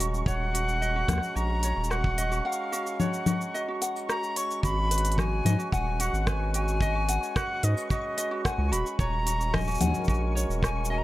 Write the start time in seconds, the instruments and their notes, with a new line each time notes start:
Already playing: analog synth bass D#1, harmonium G#3 C#4 F#4 A#5, synth texture C#6
0.00 ukulele F#4, open hi-hat, cabasa
0.14 cabasa
0.26 analog synth bass D#1, ukulele C#5, flute F#5, kick, cabasa
0.54 ukulele F#4, open hi-hat, cabasa
0.69 cabasa
0.81 ukulele D#5, cabasa
0.96 ukulele F#4
1.08 analog synth bass D#2, ukulele F#5, kick, cross-stick, open hi-hat, low conga, cabasa
1.13 cross-stick
1.18 cross-stick
1.23 cabasa
1.36 analog synth bass A#1, ukulele F#4, flute A#5, cabasa
1.63 ukulele C#5, open hi-hat, cabasa
1.77 analog synth bass D#1
1.84 cabasa
1.90 ukulele F#4, flute F#5, cross-stick, cabasa
2.04 kick
2.18 ukulele D#5, open hi-hat, cabasa
2.31 ukulele F#4, cabasa
2.45 flute F5, ukulele F#5
2.52 cabasa
2.72 ukulele F#4, cabasa
2.87 cabasa
3.00 ukulele C#5, flute F#5, low conga, cabasa
3.14 cabasa
3.26 ukulele F#4, low conga, cabasa
3.41 cabasa
3.54 ukulele D#5, cabasa
3.68 ukulele F#4
3.82 ukulele F#5, open hi-hat, cabasa
3.96 cabasa
4.09 ukulele F#4, flute A#5, cross-stick, cabasa
4.23 cabasa
4.36 ukulele C#5, flute C#6, open hi-hat, cabasa
4.51 cabasa
4.63 analog synth bass G#1, ukulele F#4, flute B5, synth texture C#6, kick, cabasa
4.91 ukulele B4, open hi-hat, cabasa
4.98 harmonium B4, open hi-hat
5.05 open hi-hat, cabasa
5.12 open hi-hat
5.18 ukulele F#4, flute G#5, kick, cross-stick, low conga, cabasa
5.45 analog synth bass G#2, ukulele D#5, open hi-hat, low conga, cabasa
5.59 ukulele F#4, cabasa
5.72 analog synth bass D#1, ukulele F#5, flute G#5, kick, cabasa
6.00 ukulele F#4, flute F#5, open hi-hat, cabasa
6.13 analog synth bass G#1, cabasa
6.27 ukulele B4, flute G#5, kick, cross-stick, cabasa
6.54 ukulele F#4, flute G#5, open hi-hat, cabasa
6.68 cabasa
6.81 ukulele D#5, kick, cabasa
6.95 ukulele F#4
7.09 ukulele F#5, open hi-hat, cabasa
7.23 cabasa
7.36 ukulele F#4, flute F#5, kick, cross-stick, cabasa
7.63 analog synth bass G#2, ukulele B4, flute D#5, open hi-hat, cabasa
7.77 cabasa
7.90 ukulele F#4, flute D#5, kick, cabasa
8.17 ukulele D#5, open hi-hat, cabasa
8.31 ukulele F#4
8.45 ukulele F#5, flute G#5, kick, cross-stick, cabasa
8.58 analog synth bass C#2
8.72 analog synth bass D#1, ukulele F#4, flute B5, open hi-hat, cabasa
8.86 cabasa
8.99 analog synth bass D#1, harmonium G#3, ukulele C#5, flute A#5, kick, cabasa
9.26 ukulele F#4, open hi-hat, cabasa
9.41 cabasa
9.53 ukulele D#5, flute G#5, kick, cross-stick, low conga, cabasa
9.58 cabasa
9.61 cabasa
9.64 ukulele F#4, cabasa
9.68 cabasa
9.71 cabasa
9.74 cabasa
9.78 analog synth bass D#2, ukulele F#5, open hi-hat, low conga, cabasa
9.81 low conga, cabasa
9.87 low conga
9.91 low conga
9.94 harmonium A#4, low conga, cabasa
9.98 low conga
10.02 low conga, cabasa
10.05 analog synth bass A#1, ukulele F#4, flute G#5, kick, low conga
10.09 cabasa
10.14 cabasa
10.35 ukulele C#5, cabasa
10.49 analog synth bass D#1, cabasa
10.62 ukulele F#4, flute G#5, kick, cross-stick, cabasa
10.85 cabasa
10.90 ukulele D#5, flute G#5
10.98 flute A#5